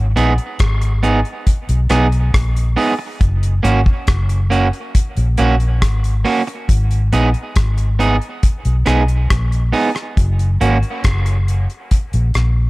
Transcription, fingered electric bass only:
0, 0, Header, 1, 2, 480
1, 0, Start_track
1, 0, Key_signature, 5, "minor"
1, 0, Tempo, 870827
1, 1767, Time_signature, 4, 2, 24, 8
1, 7000, End_track
2, 0, Start_track
2, 0, Title_t, "Fingered electric bass"
2, 0, Program_c, 0, 33
2, 0, Note_on_c, 0, 32, 111
2, 74, Note_off_c, 0, 32, 0
2, 93, Note_on_c, 0, 34, 96
2, 204, Note_off_c, 0, 34, 0
2, 332, Note_on_c, 0, 32, 89
2, 668, Note_off_c, 0, 32, 0
2, 932, Note_on_c, 0, 35, 83
2, 1042, Note_off_c, 0, 35, 0
2, 1048, Note_on_c, 0, 35, 91
2, 1272, Note_off_c, 0, 35, 0
2, 1292, Note_on_c, 0, 34, 87
2, 1513, Note_off_c, 0, 34, 0
2, 1770, Note_on_c, 0, 30, 93
2, 1992, Note_off_c, 0, 30, 0
2, 2010, Note_on_c, 0, 32, 98
2, 2121, Note_off_c, 0, 32, 0
2, 2250, Note_on_c, 0, 30, 87
2, 2587, Note_off_c, 0, 30, 0
2, 2852, Note_on_c, 0, 34, 88
2, 2961, Note_off_c, 0, 34, 0
2, 2973, Note_on_c, 0, 34, 83
2, 3193, Note_off_c, 0, 34, 0
2, 3212, Note_on_c, 0, 32, 88
2, 3433, Note_off_c, 0, 32, 0
2, 3690, Note_on_c, 0, 32, 100
2, 3912, Note_off_c, 0, 32, 0
2, 3928, Note_on_c, 0, 34, 89
2, 4039, Note_off_c, 0, 34, 0
2, 4171, Note_on_c, 0, 32, 93
2, 4507, Note_off_c, 0, 32, 0
2, 4770, Note_on_c, 0, 35, 84
2, 4879, Note_off_c, 0, 35, 0
2, 4889, Note_on_c, 0, 35, 89
2, 5111, Note_off_c, 0, 35, 0
2, 5130, Note_on_c, 0, 34, 94
2, 5352, Note_off_c, 0, 34, 0
2, 5610, Note_on_c, 0, 30, 97
2, 5831, Note_off_c, 0, 30, 0
2, 5851, Note_on_c, 0, 32, 99
2, 5961, Note_off_c, 0, 32, 0
2, 6088, Note_on_c, 0, 30, 83
2, 6426, Note_off_c, 0, 30, 0
2, 6691, Note_on_c, 0, 34, 86
2, 6800, Note_off_c, 0, 34, 0
2, 6808, Note_on_c, 0, 34, 91
2, 7000, Note_off_c, 0, 34, 0
2, 7000, End_track
0, 0, End_of_file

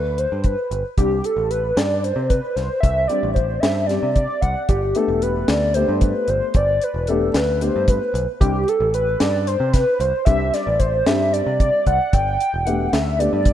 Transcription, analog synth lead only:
0, 0, Header, 1, 2, 480
1, 0, Start_track
1, 0, Key_signature, 1, "major"
1, 0, Tempo, 531444
1, 880, Time_signature, 7, 3, 24, 8
1, 12220, End_track
2, 0, Start_track
2, 0, Title_t, "Analog synth lead"
2, 0, Program_c, 0, 81
2, 0, Note_on_c, 0, 71, 75
2, 169, Note_on_c, 0, 72, 84
2, 182, Note_off_c, 0, 71, 0
2, 412, Note_on_c, 0, 71, 81
2, 425, Note_off_c, 0, 72, 0
2, 766, Note_off_c, 0, 71, 0
2, 884, Note_on_c, 0, 67, 92
2, 1129, Note_on_c, 0, 69, 79
2, 1143, Note_off_c, 0, 67, 0
2, 1360, Note_on_c, 0, 71, 85
2, 1374, Note_off_c, 0, 69, 0
2, 1603, Note_on_c, 0, 74, 83
2, 1617, Note_off_c, 0, 71, 0
2, 1840, Note_on_c, 0, 72, 83
2, 1854, Note_off_c, 0, 74, 0
2, 2071, Note_on_c, 0, 71, 94
2, 2085, Note_off_c, 0, 72, 0
2, 2307, Note_on_c, 0, 72, 88
2, 2321, Note_off_c, 0, 71, 0
2, 2529, Note_off_c, 0, 72, 0
2, 2534, Note_on_c, 0, 76, 106
2, 2777, Note_on_c, 0, 74, 93
2, 2790, Note_off_c, 0, 76, 0
2, 3018, Note_on_c, 0, 72, 81
2, 3032, Note_off_c, 0, 74, 0
2, 3251, Note_on_c, 0, 76, 87
2, 3265, Note_off_c, 0, 72, 0
2, 3490, Note_on_c, 0, 74, 89
2, 3504, Note_off_c, 0, 76, 0
2, 3745, Note_off_c, 0, 74, 0
2, 3749, Note_on_c, 0, 74, 94
2, 3985, Note_on_c, 0, 78, 93
2, 3998, Note_off_c, 0, 74, 0
2, 4233, Note_off_c, 0, 78, 0
2, 4236, Note_on_c, 0, 67, 79
2, 4489, Note_on_c, 0, 69, 78
2, 4503, Note_off_c, 0, 67, 0
2, 4718, Note_on_c, 0, 71, 78
2, 4732, Note_off_c, 0, 69, 0
2, 4958, Note_on_c, 0, 74, 81
2, 4972, Note_off_c, 0, 71, 0
2, 5185, Note_on_c, 0, 72, 78
2, 5199, Note_off_c, 0, 74, 0
2, 5444, Note_on_c, 0, 71, 79
2, 5458, Note_off_c, 0, 72, 0
2, 5683, Note_on_c, 0, 72, 92
2, 5697, Note_off_c, 0, 71, 0
2, 5928, Note_on_c, 0, 74, 102
2, 5941, Note_off_c, 0, 72, 0
2, 6173, Note_on_c, 0, 71, 88
2, 6187, Note_off_c, 0, 74, 0
2, 6397, Note_on_c, 0, 69, 75
2, 6411, Note_off_c, 0, 71, 0
2, 6642, Note_on_c, 0, 71, 80
2, 6656, Note_off_c, 0, 69, 0
2, 6881, Note_on_c, 0, 72, 94
2, 6895, Note_off_c, 0, 71, 0
2, 7126, Note_on_c, 0, 71, 89
2, 7139, Note_off_c, 0, 72, 0
2, 7482, Note_off_c, 0, 71, 0
2, 7592, Note_on_c, 0, 67, 94
2, 7844, Note_on_c, 0, 69, 90
2, 7858, Note_off_c, 0, 67, 0
2, 8074, Note_off_c, 0, 69, 0
2, 8079, Note_on_c, 0, 71, 77
2, 8316, Note_on_c, 0, 74, 85
2, 8330, Note_off_c, 0, 71, 0
2, 8555, Note_on_c, 0, 72, 92
2, 8568, Note_off_c, 0, 74, 0
2, 8785, Note_on_c, 0, 71, 95
2, 8799, Note_off_c, 0, 72, 0
2, 9034, Note_on_c, 0, 72, 90
2, 9047, Note_off_c, 0, 71, 0
2, 9256, Note_off_c, 0, 72, 0
2, 9261, Note_on_c, 0, 76, 110
2, 9517, Note_on_c, 0, 74, 94
2, 9530, Note_off_c, 0, 76, 0
2, 9747, Note_on_c, 0, 72, 90
2, 9760, Note_off_c, 0, 74, 0
2, 9991, Note_on_c, 0, 76, 89
2, 10004, Note_off_c, 0, 72, 0
2, 10231, Note_on_c, 0, 74, 103
2, 10244, Note_off_c, 0, 76, 0
2, 10473, Note_off_c, 0, 74, 0
2, 10480, Note_on_c, 0, 74, 95
2, 10701, Note_off_c, 0, 74, 0
2, 10722, Note_on_c, 0, 78, 97
2, 10962, Note_on_c, 0, 79, 114
2, 10975, Note_off_c, 0, 78, 0
2, 11425, Note_on_c, 0, 78, 93
2, 11438, Note_off_c, 0, 79, 0
2, 11675, Note_on_c, 0, 76, 91
2, 11689, Note_off_c, 0, 78, 0
2, 11916, Note_on_c, 0, 74, 112
2, 11929, Note_off_c, 0, 76, 0
2, 12220, Note_off_c, 0, 74, 0
2, 12220, End_track
0, 0, End_of_file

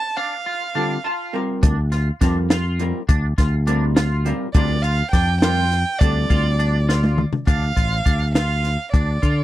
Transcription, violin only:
0, 0, Header, 1, 2, 480
1, 0, Start_track
1, 0, Key_signature, -1, "minor"
1, 0, Tempo, 584226
1, 142, Time_signature, 5, 3, 24, 8
1, 7754, End_track
2, 0, Start_track
2, 0, Title_t, "Violin"
2, 0, Program_c, 0, 40
2, 0, Note_on_c, 0, 81, 100
2, 138, Note_on_c, 0, 77, 78
2, 150, Note_off_c, 0, 81, 0
2, 1098, Note_off_c, 0, 77, 0
2, 3729, Note_on_c, 0, 74, 89
2, 3965, Note_on_c, 0, 77, 91
2, 3977, Note_off_c, 0, 74, 0
2, 4200, Note_off_c, 0, 77, 0
2, 4205, Note_on_c, 0, 79, 94
2, 4433, Note_off_c, 0, 79, 0
2, 4449, Note_on_c, 0, 79, 106
2, 4924, Note_on_c, 0, 74, 89
2, 4936, Note_off_c, 0, 79, 0
2, 5891, Note_off_c, 0, 74, 0
2, 6146, Note_on_c, 0, 77, 90
2, 6831, Note_off_c, 0, 77, 0
2, 6862, Note_on_c, 0, 77, 82
2, 7310, Note_off_c, 0, 77, 0
2, 7342, Note_on_c, 0, 74, 71
2, 7754, Note_off_c, 0, 74, 0
2, 7754, End_track
0, 0, End_of_file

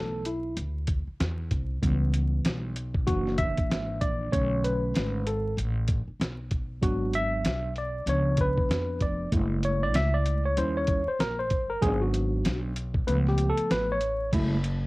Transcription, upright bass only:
0, 0, Header, 1, 3, 480
1, 0, Start_track
1, 0, Key_signature, 3, "minor"
1, 0, Tempo, 625000
1, 1400, Time_signature, 4, 2, 24, 8
1, 11419, End_track
2, 0, Start_track
2, 0, Title_t, "Upright bass"
2, 0, Program_c, 0, 32
2, 0, Note_on_c, 0, 35, 101
2, 414, Note_off_c, 0, 35, 0
2, 436, Note_on_c, 0, 38, 104
2, 802, Note_off_c, 0, 38, 0
2, 921, Note_on_c, 0, 40, 92
2, 1149, Note_off_c, 0, 40, 0
2, 1157, Note_on_c, 0, 36, 99
2, 1387, Note_off_c, 0, 36, 0
2, 1401, Note_on_c, 0, 37, 106
2, 1856, Note_off_c, 0, 37, 0
2, 1881, Note_on_c, 0, 35, 96
2, 2336, Note_off_c, 0, 35, 0
2, 2363, Note_on_c, 0, 30, 102
2, 2726, Note_off_c, 0, 30, 0
2, 2843, Note_on_c, 0, 32, 81
2, 3069, Note_off_c, 0, 32, 0
2, 3084, Note_on_c, 0, 34, 86
2, 3310, Note_off_c, 0, 34, 0
2, 3326, Note_on_c, 0, 35, 106
2, 3779, Note_off_c, 0, 35, 0
2, 3796, Note_on_c, 0, 32, 100
2, 4254, Note_off_c, 0, 32, 0
2, 4279, Note_on_c, 0, 33, 98
2, 4644, Note_off_c, 0, 33, 0
2, 4760, Note_on_c, 0, 35, 84
2, 5216, Note_off_c, 0, 35, 0
2, 5241, Note_on_c, 0, 32, 101
2, 5696, Note_off_c, 0, 32, 0
2, 5716, Note_on_c, 0, 35, 92
2, 6174, Note_off_c, 0, 35, 0
2, 6192, Note_on_c, 0, 37, 96
2, 6560, Note_off_c, 0, 37, 0
2, 6675, Note_on_c, 0, 41, 81
2, 6905, Note_off_c, 0, 41, 0
2, 6917, Note_on_c, 0, 29, 93
2, 7147, Note_off_c, 0, 29, 0
2, 7158, Note_on_c, 0, 30, 113
2, 7641, Note_off_c, 0, 30, 0
2, 7641, Note_on_c, 0, 37, 98
2, 8096, Note_off_c, 0, 37, 0
2, 8121, Note_on_c, 0, 39, 113
2, 8485, Note_off_c, 0, 39, 0
2, 8596, Note_on_c, 0, 34, 86
2, 8838, Note_off_c, 0, 34, 0
2, 8838, Note_on_c, 0, 31, 105
2, 9067, Note_off_c, 0, 31, 0
2, 9080, Note_on_c, 0, 32, 115
2, 9536, Note_off_c, 0, 32, 0
2, 9558, Note_on_c, 0, 35, 98
2, 10015, Note_off_c, 0, 35, 0
2, 10044, Note_on_c, 0, 37, 108
2, 10406, Note_off_c, 0, 37, 0
2, 10520, Note_on_c, 0, 33, 87
2, 10976, Note_off_c, 0, 33, 0
2, 11002, Note_on_c, 0, 30, 109
2, 11419, Note_off_c, 0, 30, 0
2, 11419, End_track
3, 0, Start_track
3, 0, Title_t, "Muted upright bass strokes"
3, 823, Note_on_c, 9, 29, 50
3, 900, Note_off_c, 9, 29, 0
3, 2748, Note_on_c, 9, 29, 50
3, 2825, Note_off_c, 9, 29, 0
3, 4668, Note_on_c, 9, 29, 51
3, 4744, Note_off_c, 9, 29, 0
3, 6586, Note_on_c, 9, 29, 51
3, 6662, Note_off_c, 9, 29, 0
3, 8503, Note_on_c, 9, 29, 51
3, 8580, Note_off_c, 9, 29, 0
3, 11419, End_track
0, 0, End_of_file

